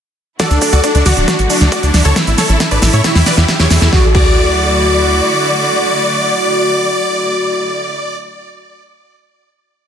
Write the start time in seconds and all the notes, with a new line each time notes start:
0.40 D3 F#3 A3 E4 F#4 A4 D5, kick, snare, closed hi-hat, riser, shaker
0.51 D2 D4, closed hi-hat, shaker
0.62 D4, kick, open hi-hat, shaker
0.73 D2 F#4 D5, closed hi-hat, shaker
0.84 D4, kick, closed hi-hat, shaker
0.95 D2 D4, closed hi-hat, shaker
1.06 D2 F#4 D5, snare, open hi-hat, shaker
1.17 D1 D4, closed hi-hat, shaker
1.28 D4, kick, snare, closed hi-hat, shaker
1.39 A1, closed hi-hat, shaker
1.50 D4, open hi-hat, shaker
1.61 D2 D4, snare, closed hi-hat, shaker
1.72 F#4 D5, kick, closed hi-hat, shaker
1.83 D2 D4, closed hi-hat, shaker
1.94 D2 D4, snare, open hi-hat, shaker
2.05 D2 A4 C#5, closed hi-hat, shaker
2.16 C#3 E3 E4 A4, kick, snare, closed hi-hat, shaker
2.27 A1 E4, closed hi-hat, shaker
2.38 A4 C#5, snare, open hi-hat, shaker
2.49 A1 E4, closed hi-hat, shaker
2.60 E4, kick, snare, closed hi-hat, shaker
2.71 A1 B4 D5, closed hi-hat, shaker
2.82 A1 E4, kick, snare, open hi-hat, shaker
2.93 A2 E4 C#5, closed hi-hat, shaker
3.04 B2 G3 E4 G4, kick, snare, closed hi-hat, shaker
3.15 E2 E4, snare, open hi-hat, shaker
3.26 B4 D5, snare, open hi-hat, shaker
3.37 E2 E4, snare, closed hi-hat, shaker
3.48 E4, kick, snare, closed hi-hat, shaker
3.60 E2 E4 C#5, snare, closed hi-hat, shaker
3.71 E2 E4, snare, open hi-hat, shaker
3.82 E2 E4, snare, closed hi-hat, shaker
3.93 D2 D3 F#3 A3 E4 F#4 D5, kick, snare
4.15 D2 F#4 D5, kick, crash